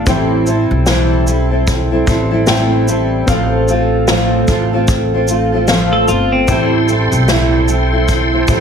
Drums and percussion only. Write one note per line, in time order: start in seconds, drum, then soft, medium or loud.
0.07 kick loud
0.07 shaker medium
0.47 shaker soft
0.86 snare loud
0.86 shaker medium
1.27 shaker medium
1.67 kick loud
1.67 shaker medium
2.07 kick loud
2.07 shaker medium
2.47 snare loud
2.47 shaker medium
2.88 shaker medium
3.28 kick loud
3.28 shaker medium
3.68 shaker soft
4.08 snare loud
4.08 shaker medium
4.48 kick medium
4.48 shaker medium
4.88 kick medium
4.88 shaker medium
5.28 shaker medium
5.68 snare loud
5.68 shaker medium
6.08 shaker medium
6.48 kick loud
6.48 shaker medium
6.88 shaker soft
7.12 shaker medium
7.28 snare loud
7.28 shaker medium
7.68 shaker medium
8.08 kick medium
8.08 shaker medium
8.48 kick loud
8.48 shaker medium